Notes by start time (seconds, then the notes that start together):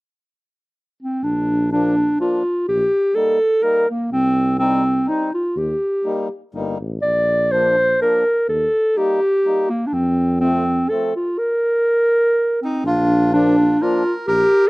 1.03 C4
1.23 A#1 D4
1.72 F3 A#3 D4
2.19 F3 A#3 D4 F4
2.68 A#1 G4
3.14 G3 A#3 D#4 A4
3.62 G3 A#3 D#4 A#4
3.90 A#3
4.12 C2 C4
4.59 G3 C4 D#4
5.06 G3 C4 D#4
5.34 F4
5.56 D#2 G4
6.04 G3 A#3 D#4
6.54 G1 G3 A#3 D#4
6.80 A1
7.02 A#1 D5
7.51 F3 A#3 D4 C5
8.00 F3 A#3 D4 A#4
8.48 D#2 A4
8.96 G3 A#3 D#4 G4
9.45 G3 A#3 D#4
9.70 A#3
9.86 D4
9.93 F2 C4
10.40 F3 A3 C4
10.89 F3 A3 C4 A4
11.16 F4
11.38 A#4
12.62 C4 D#4
12.84 A#1 D4 F4
13.33 F3 A#3 D4 F4
13.81 F3 A#3 D4 F4 A#4
14.27 A#1 G4 A#4